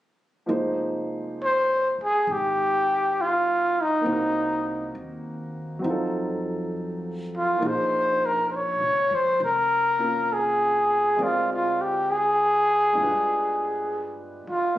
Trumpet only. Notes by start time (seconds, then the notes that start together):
1.44 C5
2.03 G#4
2.32 G4
3.21 F4
3.81 D#4
7.37 F4
7.68 C5
8.26 A#4
8.50 C5
8.56 C#5
9.15 C5
9.45 A#4
10.33 G#4
11.23 F4
11.53 F4
11.81 G4
12.10 G#4
14.50 F4